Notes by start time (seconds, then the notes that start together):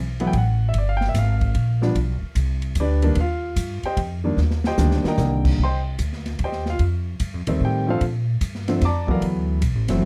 Already playing: B1
0.20 E3 F#3 A3 B3, ride
0.27 G5
0.33 A1, kick, ride
0.38 F#5
0.69 E5
0.74 G1, kick, ride
0.78 D5
0.89 F5
0.97 G5, snare
1.09 E5
1.14 G#1, kick, snare, hi-hat pedal, ride
1.18 F5
1.41 kick, ride
1.55 A#1, kick, ride
1.82 F3 G3 B3 D4, snare
1.95 B1, kick, ride
2.22 muted upright bass stroke
2.35 C2, kick, hi-hat pedal, ride
2.62 ride
2.75 D2, kick, hi-hat pedal, ride
2.80 D4 G4 B4 D5
3.02 D#3 G3 A#3 D4, ride
3.15 D#2, kick, ride
3.20 F4 F5
3.56 G2, kick, hi-hat pedal, ride
3.83 G4 C5 D#5 G5, muted upright bass stroke, ride
3.97 F2, kick, ride
4.24 D#3 G3 A#3 D4
4.37 D#2, snare
4.51 snare
4.64 G4 C5 D#5 G5, snare
4.78 D2 D#3 G3 A#3 D4, snare, hi-hat pedal
4.91 snare
5.04 A#4 D#5 G5 A#5, muted upright bass stroke, snare
5.17 C2 D3 D#3 G3 A#3, snare, hi-hat pedal
5.45 kick, crash
5.58 C2, kick
5.64 C5 D#5 G5 C6
5.99 D2, kick, hi-hat pedal, ride
6.13 snare
6.26 snare, ride
6.39 D#2, kick, ride
6.44 G4 C5 D#5 G5
6.52 snare
6.66 snare
6.70 F4 F5
6.79 F2, kick, ride
7.20 G2, kick, hi-hat pedal, ride
7.34 F2
7.47 D#2 D#3 G3 A3 C4, ride
7.60 A2, kick
7.65 G4 G5
7.87 D3 F3 A3 C4 F4 A4 C5 F5
8.01 A#2, kick, ride
8.41 G2, kick, hi-hat pedal, ride
8.55 snare
8.68 D3 F3 A3 C4, snare, ride
8.81 F2 D6, kick, snare, ride
8.85 D5 A5 A#5
9.07 E3 F#3 A3 B3 A#4 D5 F5, kick
9.11 A#5
9.21 D2, kick, ride
9.62 B1, kick, hi-hat pedal, ride
9.75 A1
9.88 F#1 E3 F#3 A3 C4, snare, ride
10.02 A1